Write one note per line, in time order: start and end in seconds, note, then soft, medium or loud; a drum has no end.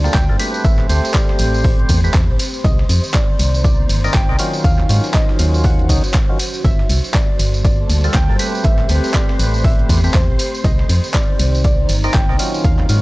0.00 0.38 G3 medium
0.00 0.38 A#3 medium
0.00 0.39 A#3 medium
0.00 0.38 D4 medium
0.00 0.39 F#4 medium
0.00 0.38 A4 medium
0.00 6.63 C5 medium
0.00 0.16 D5 loud
0.00 1.31 A5 medium
0.04 0.14 G3 medium
0.04 0.14 A#3 medium
0.04 0.14 F4 medium
0.04 0.14 A4 medium
0.04 snare soft
0.04 tambourine medium
0.14 0.31 D2 medium
0.14 0.51 G5 loud
0.14 kick loud
0.14 snare loud
0.14 clap loud
0.14 closed hi-hat medium
0.14 tambourine soft
0.29 0.37 G1 loud
0.29 0.37 G3 medium
0.29 0.37 A#3 medium
0.29 0.37 F4 medium
0.29 0.37 A4 medium
0.29 snare soft
0.39 0.87 A3 medium
0.39 2.62 A3 medium
0.39 0.87 C4 medium
0.39 2.62 C4 medium
0.39 2.62 G4 medium
0.39 0.87 G4 medium
0.39 3.45 G4 medium
0.39 0.87 B4 loud
0.39 2.62 B5 medium
0.39 closed hi-hat medium
0.39 open hi-hat loud
0.39 ride medium
0.39 tambourine medium
0.54 3.45 C4 medium
0.54 tambourine soft
0.64 0.84 A1 loud
0.64 1.16 E5 loud
0.64 kick loud
0.64 closed hi-hat medium
0.64 tambourine soft
0.79 clap soft
0.89 1.00 D2 loud
0.89 2.01 A3 medium
0.89 2.01 C4 medium
0.89 2.01 G4 medium
0.89 2.01 C5 medium
0.89 closed hi-hat medium
0.89 open hi-hat loud
0.89 ride medium
0.89 tambourine medium
1.04 snare soft
1.04 tambourine medium
1.14 1.66 D5 medium
1.14 kick loud
1.14 snare loud
1.14 clap loud
1.14 closed hi-hat medium
1.29 snare medium
1.39 1.85 A1 medium
1.39 closed hi-hat medium
1.39 open hi-hat loud
1.39 ride medium
1.39 tambourine medium
1.54 tambourine medium
1.64 2.11 C5 medium
1.64 kick loud
1.64 open hi-hat medium
1.64 tambourine soft
1.79 closed hi-hat soft
1.89 2.09 E2 medium
1.89 kick medium
1.89 closed hi-hat medium
1.89 open hi-hat loud
1.89 ride medium
1.89 tambourine loud
2.04 2.14 A3 medium
2.04 2.14 C4 medium
2.04 2.14 G4 medium
2.04 2.14 B4 medium
2.04 tambourine medium
2.14 2.31 E2 medium
2.14 kick loud
2.14 snare loud
2.14 clap loud
2.14 closed hi-hat medium
2.14 tambourine soft
2.29 2.37 A1 loud
2.39 closed hi-hat medium
2.39 open hi-hat loud
2.39 ride medium
2.39 tambourine loud
2.54 tambourine medium
2.64 2.84 C2 loud
2.64 5.45 D#3 medium
2.64 4.62 A#3 medium
2.64 4.62 C4 medium
2.64 6.60 D#4 medium
2.64 4.62 C5 medium
2.64 3.16 D#5 medium
2.64 kick loud
2.64 closed hi-hat medium
2.64 tambourine soft
2.79 snare soft
2.89 3.00 F2 loud
2.89 closed hi-hat medium
2.89 open hi-hat loud
2.89 ride medium
2.89 tambourine medium
3.04 5.45 A#5 medium
3.04 tambourine medium
3.08 4.64 D5 medium
3.14 3.63 D5 medium
3.14 kick loud
3.14 snare loud
3.14 clap loud
3.14 closed hi-hat medium
3.39 3.85 C2 medium
3.39 closed hi-hat medium
3.39 open hi-hat loud
3.39 ride medium
3.39 tambourine loud
3.54 tambourine medium
3.64 4.11 D5 medium
3.64 kick loud
3.64 closed hi-hat medium
3.64 tambourine soft
3.89 4.09 G1 medium
3.89 closed hi-hat medium
3.89 open hi-hat loud
3.89 ride medium
3.89 tambourine loud
4.04 4.14 C4 medium
4.04 4.14 D#4 medium
4.04 4.14 A#4 medium
4.04 4.14 D5 medium
4.04 snare soft
4.04 tambourine medium
4.14 4.31 G1 medium
4.14 4.51 G5 loud
4.14 kick loud
4.14 snare loud
4.14 clap loud
4.14 closed hi-hat medium
4.14 tambourine soft
4.29 4.37 C2 loud
4.29 4.37 C4 medium
4.29 4.37 D#4 medium
4.29 4.37 A#4 medium
4.29 4.37 D5 medium
4.29 snare soft
4.39 4.87 D#3 medium
4.39 4.87 F#3 medium
4.39 4.87 C#4 medium
4.39 4.87 F4 loud
4.39 closed hi-hat medium
4.39 open hi-hat loud
4.39 ride medium
4.39 tambourine medium
4.53 tambourine medium
4.64 4.84 D#2 loud
4.64 6.62 F#3 medium
4.64 6.62 C#4 medium
4.64 8.39 F#4 medium
4.64 5.16 F5 loud
4.64 kick loud
4.64 closed hi-hat medium
4.64 tambourine soft
4.79 clap soft
4.89 5.00 G#2 loud
4.89 5.87 D#3 medium
4.89 5.87 F#3 medium
4.89 5.87 C#4 medium
4.89 5.87 F4 medium
4.89 closed hi-hat medium
4.89 open hi-hat loud
4.89 ride medium
4.89 tambourine medium
5.04 snare soft
5.04 tambourine medium
5.14 5.40 D#5 loud
5.14 kick loud
5.14 snare loud
5.14 clap loud
5.14 closed hi-hat medium
5.14 tambourine soft
5.18 6.64 C#5 medium
5.29 snare medium
5.39 5.91 D#2 medium
5.39 5.65 F5 loud
5.39 closed hi-hat medium
5.39 open hi-hat loud
5.39 ride medium
5.39 tambourine medium
5.54 tambourine medium
5.64 6.11 F#5 medium
5.64 kick loud
5.64 open hi-hat medium
5.64 tambourine soft
5.79 closed hi-hat soft
5.89 6.00 C#2 medium
5.89 6.03 D#3 medium
5.89 6.03 F#3 medium
5.89 6.03 C#4 medium
5.89 6.03 D#4 medium
5.89 kick medium
5.89 closed hi-hat medium
5.89 open hi-hat loud
5.89 ride medium
5.89 tambourine loud
6.04 tambourine medium
6.14 kick loud
6.14 snare loud
6.14 clap loud
6.14 closed hi-hat medium
6.14 tambourine soft
6.29 6.39 D#3 loud
6.29 6.39 F#3 medium
6.29 6.39 C#4 medium
6.29 6.39 F4 loud
6.39 closed hi-hat medium
6.39 open hi-hat loud
6.39 ride medium
6.39 tambourine loud
6.54 tambourine medium
6.64 6.84 G1 loud
6.64 8.38 G3 medium
6.64 8.38 A#3 medium
6.64 8.38 A4 medium
6.64 13.02 C5 medium
6.64 7.16 E5 loud
6.64 kick loud
6.64 closed hi-hat medium
6.64 tambourine soft
6.79 snare soft
6.89 7.00 C2 loud
6.89 closed hi-hat medium
6.89 open hi-hat loud
6.89 ride medium
6.89 tambourine loud
7.04 tambourine medium
7.14 7.63 D5 loud
7.14 kick loud
7.14 snare loud
7.14 clap loud
7.14 closed hi-hat medium
7.14 tambourine soft
7.26 8.39 A#3 medium
7.39 7.85 G1 medium
7.39 closed hi-hat medium
7.39 open hi-hat loud
7.39 ride medium
7.39 tambourine loud
7.44 9.31 A5 medium
7.54 tambourine medium
7.64 8.11 D5 loud
7.64 kick loud
7.64 closed hi-hat medium
7.64 tambourine soft
7.89 8.09 D2 medium
7.89 closed hi-hat medium
7.89 open hi-hat loud
7.89 ride medium
7.89 tambourine medium
8.04 8.14 G3 medium
8.04 8.14 A#3 medium
8.04 8.14 F4 medium
8.04 8.14 A4 medium
8.04 snare soft
8.04 tambourine medium
8.14 8.31 D2 medium
8.14 8.51 G5 loud
8.14 kick loud
8.14 snare loud
8.14 clap loud
8.14 closed hi-hat medium
8.14 tambourine soft
8.29 8.37 G1 loud
8.29 8.37 G3 medium
8.29 8.37 A#3 medium
8.29 8.37 F4 medium
8.29 8.37 A4 loud
8.29 snare soft
8.39 8.87 A3 medium
8.39 10.62 A3 medium
8.39 10.62 C4 medium
8.39 8.87 C4 medium
8.39 11.40 G4 medium
8.39 10.62 G4 medium
8.39 8.87 G4 medium
8.39 8.87 B4 loud
8.39 10.62 B5 medium
8.39 closed hi-hat medium
8.39 open hi-hat loud
8.39 ride medium
8.39 tambourine loud
8.54 11.45 C4 medium
8.54 tambourine soft
8.64 8.84 A1 loud
8.64 9.11 E5 loud
8.64 kick loud
8.64 closed hi-hat medium
8.64 tambourine soft
8.79 clap soft
8.89 9.00 D2 loud
8.89 10.01 A3 medium
8.89 10.01 C4 medium
8.89 10.01 G4 medium
8.89 10.01 B4 medium
8.89 closed hi-hat medium
8.89 open hi-hat loud
8.89 ride medium
8.89 tambourine medium
9.04 snare soft
9.04 tambourine medium
9.14 9.66 D5 loud
9.14 kick loud
9.14 snare loud
9.14 clap loud
9.14 closed hi-hat medium
9.14 tambourine soft
9.29 snare medium
9.39 9.85 A1 medium
9.39 closed hi-hat medium
9.39 open hi-hat loud
9.39 ride medium
9.39 tambourine medium
9.54 tambourine soft
9.64 10.11 E5 loud
9.64 kick loud
9.64 open hi-hat medium
9.64 tambourine soft
9.79 closed hi-hat soft
9.89 10.09 E2 medium
9.89 kick medium
9.89 closed hi-hat medium
9.89 open hi-hat loud
9.89 ride medium
9.89 tambourine medium
10.04 10.14 A3 medium
10.04 10.14 C4 medium
10.04 10.14 G4 medium
10.04 10.14 B4 medium
10.04 tambourine soft
10.14 10.31 E2 medium
10.14 10.52 C5 medium
10.14 kick loud
10.14 snare loud
10.14 clap loud
10.14 closed hi-hat medium
10.14 tambourine soft
10.29 10.37 A1 loud
10.39 closed hi-hat medium
10.39 open hi-hat loud
10.39 ride medium
10.39 tambourine medium
10.54 tambourine medium
10.64 10.84 C2 loud
10.64 13.02 D#3 medium
10.64 12.62 A#3 medium
10.64 12.62 C4 medium
10.64 13.02 D#4 medium
10.64 12.62 C5 medium
10.64 11.16 D#5 loud
10.64 kick loud
10.64 closed hi-hat medium
10.64 tambourine soft
10.79 snare soft
10.89 11.00 F2 loud
10.89 closed hi-hat medium
10.89 open hi-hat loud
10.89 ride medium
10.89 tambourine medium
11.04 tambourine medium
11.14 12.64 D5 medium
11.14 11.63 D5 loud
11.14 kick loud
11.14 snare loud
11.14 clap loud
11.14 closed hi-hat medium
11.39 11.85 C2 medium
11.39 closed hi-hat medium
11.39 open hi-hat loud
11.39 ride medium
11.39 tambourine medium
11.55 13.02 A#5 medium
11.55 tambourine medium
11.64 12.16 D5 medium
11.64 kick loud
11.64 closed hi-hat medium
11.64 tambourine soft
11.89 12.09 G1 medium
11.89 closed hi-hat medium
11.89 open hi-hat loud
11.89 ride medium
11.89 tambourine medium
12.04 12.14 C4 medium
12.04 12.14 D#4 medium
12.04 12.14 A#4 medium
12.04 12.14 D5 medium
12.04 snare medium
12.04 tambourine soft
12.14 12.31 G1 medium
12.14 12.51 G5 loud
12.14 kick loud
12.14 snare loud
12.14 clap loud
12.14 closed hi-hat medium
12.14 tambourine soft
12.29 12.37 C2 loud
12.29 12.37 C4 medium
12.29 12.37 D#4 medium
12.29 12.37 A#4 medium
12.29 12.37 D5 medium
12.29 snare soft
12.39 12.87 D#3 medium
12.39 12.87 F#3 medium
12.39 12.87 C#4 medium
12.39 12.87 F4 loud
12.39 closed hi-hat medium
12.39 open hi-hat loud
12.39 ride medium
12.39 tambourine medium
12.54 tambourine medium
12.64 12.84 D#2 loud
12.64 13.02 F#3 medium
12.64 13.02 C#4 medium
12.64 13.02 F4 medium
12.64 13.02 F5 loud
12.64 kick loud
12.64 closed hi-hat medium
12.79 clap soft
12.89 13.00 G#2 loud
12.89 13.02 D#3 medium
12.89 13.02 F#3 medium
12.89 13.02 C#4 medium
12.89 13.02 F4 medium
12.89 closed hi-hat medium
12.89 open hi-hat loud
12.89 ride medium
12.89 tambourine medium